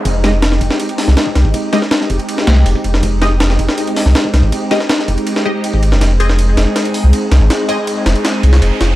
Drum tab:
RD |x-x-x-x-xx--x-x-|x-x-x-xxx-x-x-x-|x-x-x-x-xx--x-x-|x-x-x-xxx---x-x-|
HH |----------o-----|----------------|----------o-----|----------------|
SD |--o-oo-o--ooo-o-|--oooo---ooo---o|--o-oo-o--ooo-o-|--oooo---o-----o|
BD |o-----o------o-o|o-----o------o--|o-----o------o-o|o-----o------o--|

RD |x-x-x-x-xx--x-x-|x-x-x-xxx-x-x-x-|
HH |----------o-----|----------------|
SD |o--o--o-o-----o-|o-----o-o--o--o-|
BD |----------------|----------------|